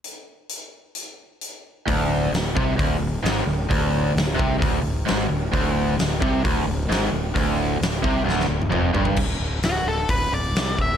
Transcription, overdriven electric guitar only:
\new Staff \with { instrumentName = "Overdriven electric guitar" } { \clef bass \time 4/4 \key c \lydian \tempo 4 = 131 r1 | d,4 d,8 c8 d,8 d,8 aes,8 d,8 | d,4 d,8 c8 d,8 d,8 aes,8 d,8 | d,4 d,8 c8 d,8 d,8 aes,8 d,8 |
d,4 d,8 c8 d,8 d,8 f,8 g,8 | r1 | }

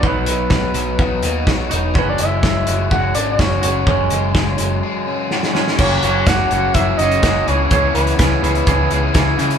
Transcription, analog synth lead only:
\new Staff \with { instrumentName = "Analog synth lead" } { \time 4/4 \key fis \mixolydian \tempo 4 = 125 b'2. r4 | b'16 d''16 e''4. fis''8 d''8 cis''4~ | cis''2 r2 | cis''8 cis''8 fis''8 fis''8 e''8 dis''4 cis''8 |
cis''8 b'2. r8 | }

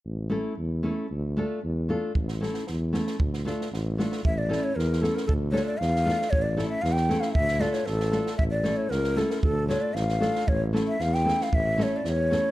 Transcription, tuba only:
\new Staff \with { instrumentName = "Tuba" } { \clef bass \time 2/4 \tempo 4 = 115 a,,4 e,4 | d,4 e,4 | a,,4 e,4 | d,4 a,,4 |
a,,4 e,4 | d,4 e,4 | a,,4 e,4 | d,4 a,,4 |
a,,4 cis,4 | d,4 a,,4 | a,,4 e,4 | a,,4 e,4 | }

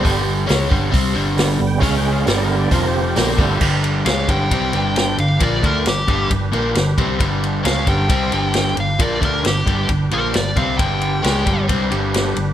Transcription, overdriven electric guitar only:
\new Staff \with { instrumentName = "Overdriven electric guitar" } { \clef bass \time 4/4 \key g \major \tempo 4 = 134 <g, d g>4 <cis aes cis'>8 <g, d g>8 <c g c'>8 <g, d g>4 <g, d>8 | <cis gis cis'>4 <g, d g>4 <f, c f>4 <bes, f bes>8 <g, d g>8 | <g, d g>4 <cis aes cis'>8 <g, d g>8 <c g c'>8 <g, d g>4 <g, d>8 | <bes, f bes>8 <d a d'>8 <g, d>8 <g, d g>8 <g, d>8 <bes, f bes>8 <g, d>8 <c g c'>8 |
<g, d g>4 <cis aes cis'>8 <g, d g>8 <c g c'>8 <g, d g>4 <g, d>8 | <bes, f bes>8 <d a d'>8 <g, d>8 <g, d g>8 <g, d>8 <bes, f bes>8 <g, d>8 <c g c'>8 | <g, d g>4 <cis aes cis'>8 <g, d g>8 <c g c'>8 <g, d g>4 <g, d>8 | }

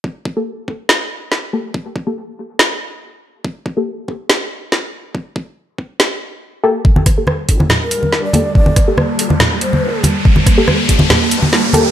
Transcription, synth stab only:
\new Staff \with { instrumentName = "Synth stab" } { \time 4/4 \key g \minor \tempo 4 = 141 r8. <bes g' a'>16 r2 r8 <bes g' a'>16 r16 | r8. <bes g' a'>16 r2. | r8. <bes g' a'>16 r2. | r2. r8 <bes g' a'>16 r16 |
r8. <bes g' a'>16 r2 r8 <bes g' a'>16 r16 | r8. <bes g' a'>16 r2. | r8. <bes g' a'>16 r2 r8 <bes g' a'>16 r16 | }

